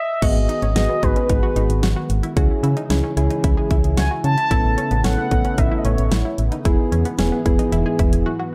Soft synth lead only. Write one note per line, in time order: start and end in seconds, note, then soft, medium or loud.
0.00 0.24 E5 loud
0.22 0.76 D#5 loud
0.76 1.04 D#5 loud
1.03 2.10 B4 medium
3.97 4.09 G#5 loud
4.24 5.01 A5 loud
5.04 5.59 F#5 loud
5.57 5.79 E5 medium
5.78 5.86 D#5 medium
5.84 6.38 C#5 medium